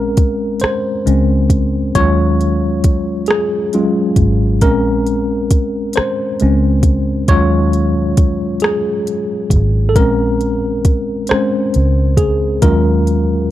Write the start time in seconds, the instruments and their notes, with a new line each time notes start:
Already playing: fingered electric bass A#1, tine electric piano G#3 C4 C#4 A#4
0.17 kick, closed hi-hat
0.60 tine electric piano C5, muted fingered electric bass stroke, closed hi-hat
0.64 cross-stick
1.06 fingered electric bass C#2, tine electric piano G#3 C4 C#4, closed hi-hat
1.50 kick, closed hi-hat
1.95 fingered electric bass D#2, tine electric piano F#3 G#3 C#4 F4 C#5, kick, closed hi-hat
2.41 closed hi-hat
2.84 kick, closed hi-hat
3.26 tine electric piano G#4, closed hi-hat
3.30 cross-stick
3.73 tine electric piano F#3 G#3 C#4 F4, closed hi-hat
4.16 fingered electric bass G#1, kick, closed hi-hat
4.61 fingered electric bass A#1, tine electric piano G#3 C4 C#4 A#4, kick, closed hi-hat
5.07 closed hi-hat
5.51 kick, closed hi-hat
5.93 tine electric piano C5, closed hi-hat
5.97 muted fingered electric bass stroke, cross-stick
6.40 fingered electric bass C#2, tine electric piano G#3 C4 C#4, closed hi-hat
6.83 kick, closed hi-hat
7.28 fingered electric bass D#2, tine electric piano F#3 G#3 C#4 F4 C#5, kick, closed hi-hat
7.73 closed hi-hat
8.17 kick, closed hi-hat
8.60 tine electric piano G#4, closed hi-hat
8.64 cross-stick
9.07 closed hi-hat
9.50 fingered electric bass G#1, kick, closed hi-hat
9.89 tine electric piano A4
9.96 fingered electric bass A#1, tine electric piano G#3 C4 C#4 A#4, kick, closed hi-hat
10.41 closed hi-hat
10.85 kick, closed hi-hat
11.27 tine electric piano G#3 C4 C5, closed hi-hat
11.31 tine electric piano C#4, muted fingered electric bass stroke, cross-stick
11.74 fingered electric bass C#2, closed hi-hat
12.17 tine electric piano G#4, kick, closed hi-hat
12.62 fingered electric bass D#2, tine electric piano F#3 G#3 C#4 F4 A#4, kick, closed hi-hat
13.07 closed hi-hat